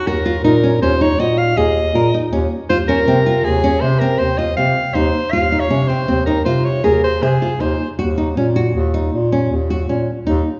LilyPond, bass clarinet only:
\new Staff \with { instrumentName = "Bass clarinet" } { \clef bass \time 7/4 \key ees \dorian \tempo 4 = 159 ees,4 bes,4 ees,4 bes,4 ees,4 bes,8 r8 ees,8 r8 | ees,4 c4 ees,4 c4 ees,4 c8 r8 ees,8 r8 | ees,4 c4 ees,4 c4 ees,4 c8 r8 ees,8 r8 | ees,4 bes,4 ees,4 bes,4 ees,4 bes,8 r8 ees,8 r8 | }